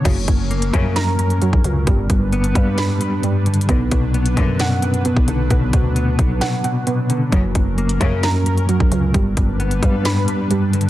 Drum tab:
CC |x-----------------------------------------------|------------------------------------------------|------------------------------------------------|------------------------------------------------|
HH |x-----x-----x--x--x-----x-----x--x--x-----x-----|x-----x-----x--x--x-----x-----x-----x-----x-x-x-|x-----x-----x--x--x-----x-----x--x--x-----x-----|x-----x-----x-----x-----x-----x-----x-----x-----|
SD |------------------------o-----------------------|------------------------o-----------------------|------------------------o-----------------------|------------------------o-----------------------|
BD |o-----o-----------o--------------------o--------|o-----o-----------o-----------------------------|o-----o-----------o--------------------o--------|o-----o-----------o-----------------------------|

CC |------------------------------------------------|------------------------------------------------|
HH |x-----x-----x--x--x-----x-----x--x--x-----x-----|x-----x-----x--x--x-----x-----x-----x-----x-x---|
SD |------------------------o-----------------------|------------------------o-----------------------|
BD |o-----o-----------o--------------------o--------|o-----o-----------o-----------------------------|